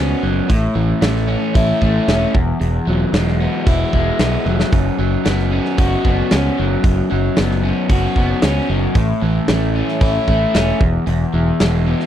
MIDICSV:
0, 0, Header, 1, 4, 480
1, 0, Start_track
1, 0, Tempo, 528634
1, 454, Time_signature, 4, 2, 24, 8
1, 10951, End_track
2, 0, Start_track
2, 0, Title_t, "Overdriven electric guitar"
2, 0, Program_c, 0, 29
2, 0, Note_on_c, 0, 59, 66
2, 0, Note_on_c, 0, 61, 54
2, 0, Note_on_c, 0, 66, 70
2, 215, Note_on_c, 0, 54, 63
2, 446, Note_on_c, 0, 45, 72
2, 450, Note_off_c, 0, 59, 0
2, 450, Note_off_c, 0, 66, 0
2, 454, Note_off_c, 0, 54, 0
2, 454, Note_off_c, 0, 61, 0
2, 685, Note_on_c, 0, 52, 67
2, 921, Note_on_c, 0, 57, 60
2, 1158, Note_on_c, 0, 61, 64
2, 1403, Note_on_c, 0, 64, 71
2, 1634, Note_off_c, 0, 57, 0
2, 1645, Note_on_c, 0, 57, 64
2, 1650, Note_off_c, 0, 45, 0
2, 1879, Note_off_c, 0, 61, 0
2, 1890, Note_off_c, 0, 52, 0
2, 1890, Note_on_c, 0, 61, 58
2, 2119, Note_on_c, 0, 40, 61
2, 2128, Note_off_c, 0, 64, 0
2, 2129, Note_off_c, 0, 57, 0
2, 2132, Note_off_c, 0, 61, 0
2, 2350, Note_off_c, 0, 40, 0
2, 2361, Note_on_c, 0, 40, 69
2, 2605, Note_on_c, 0, 54, 64
2, 2847, Note_on_c, 0, 56, 63
2, 3088, Note_on_c, 0, 59, 60
2, 3330, Note_on_c, 0, 64, 70
2, 3564, Note_off_c, 0, 56, 0
2, 3566, Note_off_c, 0, 40, 0
2, 3575, Note_on_c, 0, 56, 60
2, 3806, Note_off_c, 0, 59, 0
2, 3810, Note_on_c, 0, 59, 60
2, 4047, Note_off_c, 0, 54, 0
2, 4051, Note_on_c, 0, 54, 64
2, 4285, Note_on_c, 0, 42, 67
2, 4290, Note_off_c, 0, 64, 0
2, 4293, Note_off_c, 0, 56, 0
2, 4529, Note_off_c, 0, 54, 0
2, 4533, Note_on_c, 0, 54, 67
2, 4765, Note_off_c, 0, 59, 0
2, 4765, Note_on_c, 0, 59, 63
2, 5009, Note_on_c, 0, 61, 59
2, 5249, Note_on_c, 0, 66, 71
2, 5483, Note_off_c, 0, 59, 0
2, 5488, Note_off_c, 0, 42, 0
2, 5494, Note_on_c, 0, 59, 60
2, 5730, Note_off_c, 0, 61, 0
2, 5731, Note_off_c, 0, 54, 0
2, 5734, Note_on_c, 0, 61, 59
2, 5978, Note_on_c, 0, 54, 66
2, 6213, Note_on_c, 0, 42, 72
2, 6445, Note_off_c, 0, 54, 0
2, 6449, Note_off_c, 0, 66, 0
2, 6456, Note_on_c, 0, 54, 66
2, 6678, Note_off_c, 0, 59, 0
2, 6689, Note_on_c, 0, 59, 59
2, 6927, Note_off_c, 0, 61, 0
2, 6930, Note_on_c, 0, 61, 57
2, 7177, Note_on_c, 0, 66, 71
2, 7402, Note_off_c, 0, 59, 0
2, 7411, Note_off_c, 0, 42, 0
2, 7413, Note_on_c, 0, 59, 67
2, 7638, Note_off_c, 0, 61, 0
2, 7649, Note_on_c, 0, 61, 64
2, 7653, Note_off_c, 0, 54, 0
2, 7891, Note_on_c, 0, 54, 67
2, 8130, Note_off_c, 0, 61, 0
2, 8130, Note_on_c, 0, 45, 73
2, 8131, Note_off_c, 0, 54, 0
2, 8132, Note_off_c, 0, 59, 0
2, 8134, Note_off_c, 0, 66, 0
2, 8369, Note_on_c, 0, 52, 64
2, 8611, Note_on_c, 0, 57, 67
2, 8854, Note_on_c, 0, 61, 61
2, 9093, Note_on_c, 0, 64, 69
2, 9331, Note_off_c, 0, 57, 0
2, 9332, Note_off_c, 0, 45, 0
2, 9342, Note_on_c, 0, 57, 64
2, 9560, Note_off_c, 0, 61, 0
2, 9571, Note_off_c, 0, 52, 0
2, 9571, Note_on_c, 0, 61, 63
2, 9811, Note_on_c, 0, 40, 67
2, 9812, Note_off_c, 0, 61, 0
2, 9813, Note_off_c, 0, 64, 0
2, 9817, Note_off_c, 0, 57, 0
2, 10039, Note_off_c, 0, 40, 0
2, 10050, Note_on_c, 0, 40, 72
2, 10293, Note_on_c, 0, 52, 63
2, 10536, Note_on_c, 0, 56, 65
2, 10773, Note_on_c, 0, 59, 61
2, 10951, Note_off_c, 0, 40, 0
2, 10951, Note_off_c, 0, 52, 0
2, 10951, Note_off_c, 0, 56, 0
2, 10951, Note_off_c, 0, 59, 0
2, 10951, End_track
3, 0, Start_track
3, 0, Title_t, "Fingered electric bass"
3, 0, Program_c, 1, 33
3, 0, Note_on_c, 1, 37, 87
3, 117, Note_off_c, 1, 37, 0
3, 210, Note_on_c, 1, 30, 74
3, 360, Note_off_c, 1, 30, 0
3, 455, Note_on_c, 1, 33, 86
3, 603, Note_off_c, 1, 33, 0
3, 684, Note_on_c, 1, 33, 81
3, 836, Note_off_c, 1, 33, 0
3, 925, Note_on_c, 1, 33, 82
3, 1224, Note_off_c, 1, 33, 0
3, 1407, Note_on_c, 1, 33, 82
3, 1557, Note_off_c, 1, 33, 0
3, 1650, Note_on_c, 1, 33, 81
3, 1799, Note_off_c, 1, 33, 0
3, 1887, Note_on_c, 1, 28, 85
3, 2037, Note_off_c, 1, 28, 0
3, 2131, Note_on_c, 1, 28, 80
3, 2280, Note_off_c, 1, 28, 0
3, 2370, Note_on_c, 1, 28, 88
3, 2519, Note_off_c, 1, 28, 0
3, 2608, Note_on_c, 1, 28, 79
3, 2758, Note_off_c, 1, 28, 0
3, 2842, Note_on_c, 1, 28, 79
3, 3142, Note_off_c, 1, 28, 0
3, 3328, Note_on_c, 1, 28, 82
3, 3478, Note_off_c, 1, 28, 0
3, 3572, Note_on_c, 1, 28, 76
3, 3720, Note_off_c, 1, 28, 0
3, 3808, Note_on_c, 1, 35, 86
3, 3957, Note_off_c, 1, 35, 0
3, 4048, Note_on_c, 1, 29, 83
3, 4197, Note_off_c, 1, 29, 0
3, 4289, Note_on_c, 1, 30, 89
3, 4438, Note_off_c, 1, 30, 0
3, 4529, Note_on_c, 1, 30, 78
3, 4678, Note_off_c, 1, 30, 0
3, 4774, Note_on_c, 1, 30, 81
3, 5069, Note_off_c, 1, 30, 0
3, 5251, Note_on_c, 1, 30, 83
3, 5399, Note_off_c, 1, 30, 0
3, 5490, Note_on_c, 1, 30, 74
3, 5639, Note_off_c, 1, 30, 0
3, 5744, Note_on_c, 1, 37, 84
3, 5888, Note_off_c, 1, 37, 0
3, 5987, Note_on_c, 1, 30, 82
3, 6130, Note_off_c, 1, 30, 0
3, 6209, Note_on_c, 1, 30, 88
3, 6358, Note_off_c, 1, 30, 0
3, 6464, Note_on_c, 1, 30, 81
3, 6608, Note_off_c, 1, 30, 0
3, 6707, Note_on_c, 1, 30, 86
3, 6998, Note_off_c, 1, 30, 0
3, 7171, Note_on_c, 1, 30, 89
3, 7319, Note_off_c, 1, 30, 0
3, 7408, Note_on_c, 1, 30, 74
3, 7557, Note_off_c, 1, 30, 0
3, 7648, Note_on_c, 1, 37, 89
3, 7797, Note_off_c, 1, 37, 0
3, 7895, Note_on_c, 1, 30, 86
3, 8042, Note_off_c, 1, 30, 0
3, 8128, Note_on_c, 1, 33, 90
3, 8277, Note_off_c, 1, 33, 0
3, 8373, Note_on_c, 1, 33, 83
3, 8521, Note_off_c, 1, 33, 0
3, 8610, Note_on_c, 1, 33, 85
3, 8907, Note_off_c, 1, 33, 0
3, 9089, Note_on_c, 1, 33, 87
3, 9238, Note_off_c, 1, 33, 0
3, 9333, Note_on_c, 1, 33, 84
3, 9481, Note_off_c, 1, 33, 0
3, 9577, Note_on_c, 1, 28, 83
3, 9724, Note_off_c, 1, 28, 0
3, 9811, Note_on_c, 1, 28, 74
3, 9960, Note_off_c, 1, 28, 0
3, 10051, Note_on_c, 1, 28, 90
3, 10200, Note_off_c, 1, 28, 0
3, 10293, Note_on_c, 1, 28, 81
3, 10442, Note_off_c, 1, 28, 0
3, 10537, Note_on_c, 1, 28, 82
3, 10832, Note_off_c, 1, 28, 0
3, 10951, End_track
4, 0, Start_track
4, 0, Title_t, "Drums"
4, 451, Note_on_c, 9, 36, 96
4, 452, Note_on_c, 9, 46, 49
4, 542, Note_off_c, 9, 36, 0
4, 543, Note_off_c, 9, 46, 0
4, 927, Note_on_c, 9, 46, 54
4, 929, Note_on_c, 9, 38, 106
4, 1018, Note_off_c, 9, 46, 0
4, 1020, Note_off_c, 9, 38, 0
4, 1054, Note_on_c, 9, 38, 32
4, 1145, Note_off_c, 9, 38, 0
4, 1410, Note_on_c, 9, 36, 109
4, 1411, Note_on_c, 9, 46, 49
4, 1501, Note_off_c, 9, 36, 0
4, 1502, Note_off_c, 9, 46, 0
4, 1649, Note_on_c, 9, 36, 70
4, 1740, Note_off_c, 9, 36, 0
4, 1891, Note_on_c, 9, 46, 49
4, 1893, Note_on_c, 9, 38, 98
4, 1982, Note_off_c, 9, 46, 0
4, 1984, Note_off_c, 9, 38, 0
4, 2130, Note_on_c, 9, 36, 94
4, 2221, Note_off_c, 9, 36, 0
4, 2373, Note_on_c, 9, 46, 46
4, 2464, Note_off_c, 9, 46, 0
4, 2849, Note_on_c, 9, 46, 47
4, 2851, Note_on_c, 9, 38, 101
4, 2940, Note_off_c, 9, 46, 0
4, 2942, Note_off_c, 9, 38, 0
4, 2976, Note_on_c, 9, 38, 32
4, 3066, Note_off_c, 9, 38, 0
4, 3330, Note_on_c, 9, 36, 102
4, 3332, Note_on_c, 9, 46, 47
4, 3420, Note_off_c, 9, 36, 0
4, 3423, Note_off_c, 9, 46, 0
4, 3570, Note_on_c, 9, 36, 69
4, 3661, Note_off_c, 9, 36, 0
4, 3807, Note_on_c, 9, 46, 47
4, 3809, Note_on_c, 9, 38, 106
4, 3898, Note_off_c, 9, 46, 0
4, 3900, Note_off_c, 9, 38, 0
4, 4054, Note_on_c, 9, 48, 54
4, 4145, Note_off_c, 9, 48, 0
4, 4175, Note_on_c, 9, 38, 77
4, 4266, Note_off_c, 9, 38, 0
4, 4291, Note_on_c, 9, 36, 96
4, 4291, Note_on_c, 9, 46, 46
4, 4382, Note_off_c, 9, 36, 0
4, 4382, Note_off_c, 9, 46, 0
4, 4771, Note_on_c, 9, 46, 50
4, 4773, Note_on_c, 9, 38, 103
4, 4862, Note_off_c, 9, 46, 0
4, 4864, Note_off_c, 9, 38, 0
4, 4893, Note_on_c, 9, 38, 29
4, 4984, Note_off_c, 9, 38, 0
4, 5133, Note_on_c, 9, 38, 33
4, 5224, Note_off_c, 9, 38, 0
4, 5250, Note_on_c, 9, 46, 49
4, 5251, Note_on_c, 9, 36, 102
4, 5341, Note_off_c, 9, 46, 0
4, 5342, Note_off_c, 9, 36, 0
4, 5491, Note_on_c, 9, 36, 74
4, 5581, Note_off_c, 9, 36, 0
4, 5729, Note_on_c, 9, 46, 49
4, 5730, Note_on_c, 9, 38, 108
4, 5819, Note_off_c, 9, 46, 0
4, 5821, Note_off_c, 9, 38, 0
4, 6209, Note_on_c, 9, 46, 51
4, 6210, Note_on_c, 9, 36, 100
4, 6300, Note_off_c, 9, 46, 0
4, 6301, Note_off_c, 9, 36, 0
4, 6688, Note_on_c, 9, 46, 50
4, 6690, Note_on_c, 9, 38, 103
4, 6779, Note_off_c, 9, 46, 0
4, 6781, Note_off_c, 9, 38, 0
4, 6816, Note_on_c, 9, 38, 30
4, 6907, Note_off_c, 9, 38, 0
4, 7168, Note_on_c, 9, 46, 50
4, 7169, Note_on_c, 9, 36, 104
4, 7259, Note_off_c, 9, 46, 0
4, 7260, Note_off_c, 9, 36, 0
4, 7408, Note_on_c, 9, 36, 72
4, 7498, Note_off_c, 9, 36, 0
4, 7646, Note_on_c, 9, 46, 50
4, 7648, Note_on_c, 9, 38, 110
4, 7737, Note_off_c, 9, 46, 0
4, 7739, Note_off_c, 9, 38, 0
4, 8125, Note_on_c, 9, 46, 43
4, 8128, Note_on_c, 9, 36, 105
4, 8216, Note_off_c, 9, 46, 0
4, 8219, Note_off_c, 9, 36, 0
4, 8608, Note_on_c, 9, 46, 48
4, 8609, Note_on_c, 9, 38, 114
4, 8698, Note_off_c, 9, 46, 0
4, 8700, Note_off_c, 9, 38, 0
4, 8976, Note_on_c, 9, 38, 31
4, 9067, Note_off_c, 9, 38, 0
4, 9090, Note_on_c, 9, 36, 103
4, 9090, Note_on_c, 9, 46, 45
4, 9181, Note_off_c, 9, 36, 0
4, 9181, Note_off_c, 9, 46, 0
4, 9331, Note_on_c, 9, 36, 69
4, 9422, Note_off_c, 9, 36, 0
4, 9576, Note_on_c, 9, 46, 49
4, 9577, Note_on_c, 9, 38, 101
4, 9666, Note_off_c, 9, 46, 0
4, 9668, Note_off_c, 9, 38, 0
4, 9812, Note_on_c, 9, 36, 97
4, 9903, Note_off_c, 9, 36, 0
4, 10052, Note_on_c, 9, 46, 47
4, 10143, Note_off_c, 9, 46, 0
4, 10533, Note_on_c, 9, 46, 54
4, 10535, Note_on_c, 9, 38, 102
4, 10624, Note_off_c, 9, 46, 0
4, 10626, Note_off_c, 9, 38, 0
4, 10894, Note_on_c, 9, 38, 33
4, 10951, Note_off_c, 9, 38, 0
4, 10951, End_track
0, 0, End_of_file